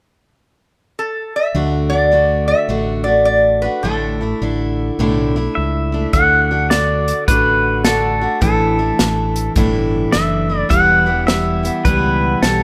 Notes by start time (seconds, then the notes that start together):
0.99 A4
1.36 E5
1.54 D2 D3 A3 D4 F#4
1.90 A3 D4 F#4 D5
2.12 D3 A3 D4 F#4
2.48 E5
2.68 A1 D3 A3 D4 F#4
3.04 D4 F#4 D5
3.08 A3
3.25 D5
3.62 A3 D4 F#4 B4
3.83 A1 A2 D3 A3 D4 E4 A4
4.21 A3 D4 E4
4.41 A1 D3 A3 D4 E4
4.98 B1 A2 D3 A3 D4 E4
5.36 A3 D4 E4
5.55 C#2 E5
5.92 A3 D4 E4
6.13 D2 D3 A3 D4 F#4 F#5, kick, closed hi-hat
6.51 A3 D4 F#4
6.70 D3 A3 D4 F#4 D5, snare, closed hi-hat
7.08 closed hi-hat
7.28 A1 D3 A3 D4 F#4 B4, kick, closed hi-hat
7.84 D3 A3 D4 F#4 A4, snare, closed hi-hat
8.21 A3 D4 F#4
8.41 A1 A2 E3 A3 D4 E4 A4, kick, closed hi-hat
8.79 A3 D4 E4
8.99 A1 E3 A3 D4 E4, snare, closed hi-hat
9.36 closed hi-hat
9.56 G1 A2 E3 A3 D4 E4, kick, closed hi-hat
10.12 F#1 E3 A3 D4 E4 E5, snare, closed hi-hat
10.49 A3 D4 E4
10.58 D5
10.69 E1 E2 B2 E3 G3 B3 E4 F#5, kick, closed hi-hat
11.06 E3 G3 B3 E4
11.27 E3 G3 B3 E4 E5, snare, closed hi-hat
11.63 E3 G3 B3 E4, closed hi-hat
11.85 C#2 E2 B2 E3 G3 B3 E4 B4, kick, closed hi-hat
12.42 B1 E3 G3 B3 E4 A4, snare, closed hi-hat